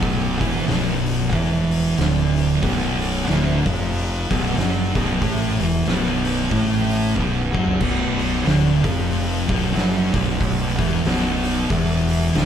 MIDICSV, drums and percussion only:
0, 0, Header, 1, 2, 480
1, 0, Start_track
1, 0, Tempo, 648649
1, 13, Time_signature, 4, 2, 24, 8
1, 9216, End_track
2, 0, Start_track
2, 0, Title_t, "Drums"
2, 19, Note_on_c, 9, 36, 115
2, 20, Note_on_c, 9, 46, 79
2, 93, Note_off_c, 9, 36, 0
2, 94, Note_off_c, 9, 46, 0
2, 303, Note_on_c, 9, 36, 108
2, 304, Note_on_c, 9, 46, 59
2, 377, Note_off_c, 9, 36, 0
2, 378, Note_off_c, 9, 46, 0
2, 420, Note_on_c, 9, 38, 34
2, 494, Note_off_c, 9, 38, 0
2, 501, Note_on_c, 9, 46, 80
2, 514, Note_on_c, 9, 38, 127
2, 575, Note_off_c, 9, 46, 0
2, 588, Note_off_c, 9, 38, 0
2, 785, Note_on_c, 9, 46, 59
2, 859, Note_off_c, 9, 46, 0
2, 982, Note_on_c, 9, 36, 105
2, 982, Note_on_c, 9, 46, 72
2, 1056, Note_off_c, 9, 36, 0
2, 1056, Note_off_c, 9, 46, 0
2, 1138, Note_on_c, 9, 38, 34
2, 1212, Note_off_c, 9, 38, 0
2, 1266, Note_on_c, 9, 46, 65
2, 1340, Note_off_c, 9, 46, 0
2, 1464, Note_on_c, 9, 46, 83
2, 1477, Note_on_c, 9, 38, 125
2, 1538, Note_off_c, 9, 46, 0
2, 1551, Note_off_c, 9, 38, 0
2, 1747, Note_on_c, 9, 46, 55
2, 1821, Note_off_c, 9, 46, 0
2, 1943, Note_on_c, 9, 46, 80
2, 1945, Note_on_c, 9, 36, 112
2, 2017, Note_off_c, 9, 46, 0
2, 2019, Note_off_c, 9, 36, 0
2, 2230, Note_on_c, 9, 46, 61
2, 2304, Note_off_c, 9, 46, 0
2, 2424, Note_on_c, 9, 46, 87
2, 2438, Note_on_c, 9, 38, 116
2, 2498, Note_off_c, 9, 46, 0
2, 2512, Note_off_c, 9, 38, 0
2, 2708, Note_on_c, 9, 36, 110
2, 2709, Note_on_c, 9, 46, 61
2, 2782, Note_off_c, 9, 36, 0
2, 2783, Note_off_c, 9, 46, 0
2, 2906, Note_on_c, 9, 46, 81
2, 2980, Note_off_c, 9, 46, 0
2, 3188, Note_on_c, 9, 36, 111
2, 3189, Note_on_c, 9, 46, 63
2, 3262, Note_off_c, 9, 36, 0
2, 3263, Note_off_c, 9, 46, 0
2, 3383, Note_on_c, 9, 46, 92
2, 3396, Note_on_c, 9, 38, 120
2, 3457, Note_off_c, 9, 46, 0
2, 3470, Note_off_c, 9, 38, 0
2, 3666, Note_on_c, 9, 36, 102
2, 3666, Note_on_c, 9, 46, 60
2, 3740, Note_off_c, 9, 36, 0
2, 3740, Note_off_c, 9, 46, 0
2, 3860, Note_on_c, 9, 46, 92
2, 3862, Note_on_c, 9, 36, 113
2, 3934, Note_off_c, 9, 46, 0
2, 3936, Note_off_c, 9, 36, 0
2, 4143, Note_on_c, 9, 46, 57
2, 4217, Note_off_c, 9, 46, 0
2, 4336, Note_on_c, 9, 46, 82
2, 4349, Note_on_c, 9, 38, 112
2, 4410, Note_off_c, 9, 46, 0
2, 4423, Note_off_c, 9, 38, 0
2, 4621, Note_on_c, 9, 46, 60
2, 4695, Note_off_c, 9, 46, 0
2, 4817, Note_on_c, 9, 46, 85
2, 4820, Note_on_c, 9, 36, 103
2, 4891, Note_off_c, 9, 46, 0
2, 4894, Note_off_c, 9, 36, 0
2, 4974, Note_on_c, 9, 38, 34
2, 5048, Note_off_c, 9, 38, 0
2, 5101, Note_on_c, 9, 46, 63
2, 5175, Note_off_c, 9, 46, 0
2, 5301, Note_on_c, 9, 36, 70
2, 5375, Note_off_c, 9, 36, 0
2, 5583, Note_on_c, 9, 36, 88
2, 5657, Note_off_c, 9, 36, 0
2, 5679, Note_on_c, 9, 43, 95
2, 5753, Note_off_c, 9, 43, 0
2, 5775, Note_on_c, 9, 49, 110
2, 5779, Note_on_c, 9, 36, 108
2, 5849, Note_off_c, 9, 49, 0
2, 5853, Note_off_c, 9, 36, 0
2, 6060, Note_on_c, 9, 46, 51
2, 6134, Note_off_c, 9, 46, 0
2, 6174, Note_on_c, 9, 38, 35
2, 6248, Note_off_c, 9, 38, 0
2, 6257, Note_on_c, 9, 46, 80
2, 6271, Note_on_c, 9, 38, 125
2, 6331, Note_off_c, 9, 46, 0
2, 6345, Note_off_c, 9, 38, 0
2, 6542, Note_on_c, 9, 46, 64
2, 6543, Note_on_c, 9, 36, 99
2, 6616, Note_off_c, 9, 46, 0
2, 6617, Note_off_c, 9, 36, 0
2, 6740, Note_on_c, 9, 46, 80
2, 6814, Note_off_c, 9, 46, 0
2, 7024, Note_on_c, 9, 36, 115
2, 7025, Note_on_c, 9, 46, 72
2, 7098, Note_off_c, 9, 36, 0
2, 7099, Note_off_c, 9, 46, 0
2, 7220, Note_on_c, 9, 46, 95
2, 7234, Note_on_c, 9, 38, 123
2, 7294, Note_off_c, 9, 46, 0
2, 7308, Note_off_c, 9, 38, 0
2, 7502, Note_on_c, 9, 46, 63
2, 7503, Note_on_c, 9, 36, 118
2, 7576, Note_off_c, 9, 46, 0
2, 7577, Note_off_c, 9, 36, 0
2, 7700, Note_on_c, 9, 46, 86
2, 7701, Note_on_c, 9, 36, 113
2, 7774, Note_off_c, 9, 46, 0
2, 7775, Note_off_c, 9, 36, 0
2, 7983, Note_on_c, 9, 36, 102
2, 7986, Note_on_c, 9, 46, 66
2, 8057, Note_off_c, 9, 36, 0
2, 8060, Note_off_c, 9, 46, 0
2, 8094, Note_on_c, 9, 38, 37
2, 8168, Note_off_c, 9, 38, 0
2, 8177, Note_on_c, 9, 46, 88
2, 8190, Note_on_c, 9, 38, 121
2, 8251, Note_off_c, 9, 46, 0
2, 8264, Note_off_c, 9, 38, 0
2, 8462, Note_on_c, 9, 46, 62
2, 8536, Note_off_c, 9, 46, 0
2, 8660, Note_on_c, 9, 36, 109
2, 8662, Note_on_c, 9, 46, 83
2, 8734, Note_off_c, 9, 36, 0
2, 8736, Note_off_c, 9, 46, 0
2, 8944, Note_on_c, 9, 46, 70
2, 9018, Note_off_c, 9, 46, 0
2, 9137, Note_on_c, 9, 46, 92
2, 9150, Note_on_c, 9, 38, 127
2, 9211, Note_off_c, 9, 46, 0
2, 9216, Note_off_c, 9, 38, 0
2, 9216, End_track
0, 0, End_of_file